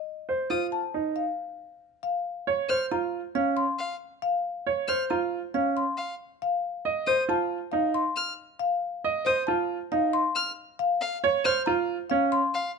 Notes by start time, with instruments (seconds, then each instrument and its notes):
Already playing: marimba D#5
0.29 grand piano C5
0.50 grand piano F4, marimba C5, violin D#6
0.72 marimba A5
0.94 grand piano D#4
1.16 marimba F5
2.03 marimba F5
2.47 grand piano C#5
2.69 marimba C5, grand piano C5, violin F6
2.91 grand piano F4, marimba A#5
3.35 grand piano C#4, marimba F5
3.57 marimba C6
3.79 violin F5
4.22 marimba F5
4.67 grand piano C#5
4.88 marimba C5, grand piano C5, violin F6
5.10 grand piano F4, marimba A#5
5.54 grand piano C#4, marimba F5
5.77 marimba C6
5.97 violin F5
6.42 marimba F5
6.85 grand piano D#5
7.07 grand piano C5, marimba C5, violin D#6
7.29 grand piano F4, marimba A5
7.72 grand piano D#4, marimba F5
7.94 marimba C6
8.16 violin F6
8.59 marimba F5
9.04 grand piano D#5
9.25 marimba C5, grand piano C5, violin D#6
9.47 grand piano F4, marimba A5
9.92 grand piano D#4, marimba F5
10.13 marimba C6
10.35 violin F6
10.79 marimba F5
11.01 violin F5
11.24 grand piano C#5
11.45 marimba C5, grand piano C5, violin F6
11.66 grand piano F4, marimba A#5
12.10 grand piano C#4, marimba F5
12.32 marimba C6
12.54 violin F5